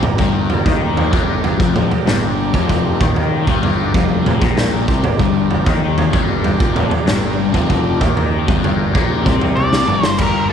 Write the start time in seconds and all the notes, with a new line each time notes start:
Already playing: G4 A#4 D5
0.02 G1 G2, floor tom, mid tom
0.18 G1 G2 G3, kick, floor tom
0.50 floor tom
0.65 D#2 D#3 D#4, kick, floor tom
0.97 floor tom
1.12 G1 G2 G3, kick, floor tom
1.44 floor tom
1.59 F1 F2 F3, kick
1.76 floor tom, mid tom
1.90 muted picked electric bass stroke, muted distorted electric guitar stroke, floor tom
2.05 G1 G2 G3, snare, mid tom
2.53 F1 F2 F3, kick, floor tom
2.69 kick, floor tom
3.00 D#2 D#3 D#4, kick, floor tom, mid tom
3.16 floor tom
3.47 G1 G2 G3, kick, floor tom
3.63 floor tom
3.94 F1 F2 F3, kick, floor tom
4.26 floor tom, mid tom
4.40 A#1 A#2 A#3, kick, floor tom
4.57 snare, mid tom
4.87 C2 C3 C4, kick
5.03 G1 G2, floor tom, mid tom
5.19 G1 G2 G3, kick, floor tom
5.51 floor tom
5.65 D#2 D#3 D#4, kick, floor tom
5.98 floor tom
6.13 G1 G2 G3, kick, floor tom
6.44 floor tom
6.60 F1 F2 F3, kick
6.76 floor tom, mid tom
6.91 muted distorted electric guitar stroke, muted picked electric bass stroke, floor tom
7.05 G1 G2 G3, snare, mid tom
7.53 F1 F2 F3, kick, floor tom
7.70 kick, floor tom
8.00 D#2 D#3 D#4, kick, floor tom, mid tom
8.17 floor tom
8.47 G1 G2 G3, kick, floor tom
8.64 floor tom
8.93 A#1 A#2 A#3, kick, floor tom
9.25 C2 C3 C4, kick, floor tom, mid tom
9.41 floor tom
9.56 D5, high tom
9.73 snare
9.87 G1 G2 G3, mid tom
10.04 C5, snare
10.18 G1 G3 A#3 F4 G4 A#4, kick, floor tom, crash
10.49 A4